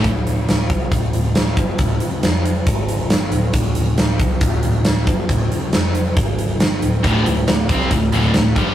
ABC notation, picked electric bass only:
X:1
M:4/4
L:1/8
Q:1/4=137
K:Dm
V:1 name="Picked electric bass" clef=bass
D,,, D,,, D,,, C,, D,,, D,,, D,,, G,,, | D,,, z F,,,2 ^G,,,2 =G,,, D,,, | D,,, D,,, D,,, C,, D,,, D,,, D,,, G,,, | D,,, z F,,,2 ^G,,,2 =G,,, D,,, |
D,,, D,,, D,,, C,, D,,, D,,, D,,, G,,, |]